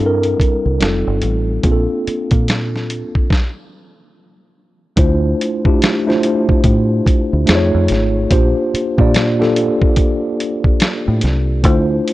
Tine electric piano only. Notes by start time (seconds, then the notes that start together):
Already playing: G3 C4 A#4
0.00 D4 E4 A4
0.06 A#4
0.80 G3 C4 D#4 F4 A4
1.63 A#3 C4 D4 F4 G#4
1.72 A4
4.96 A3 D4 E4 F4 C5
5.65 A3 D4 E4 F4 G4
6.06 A3 D4 E4 F4 C5
7.46 A3 D#4 F4 G#4 C5
7.55 C#5
8.30 A#3 D4 F4 G4 C5
8.98 A#3 D4 F4 G4 D5
9.39 A#3 D4 F4 G4 A4
11.64 A3 D4 E4 F4 C5